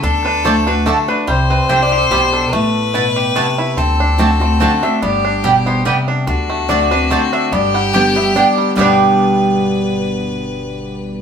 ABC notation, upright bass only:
X:1
M:3/4
L:1/8
Q:"Swing" 1/4=144
K:G
V:1 name="Upright bass" clef=bass
D,,6 | C,,2 C,,2 B,,,2 | A,,,6 | D,,6 |
G,,,6 | D,,6 | G,,,6 | G,,,6- |
G,,,6 |]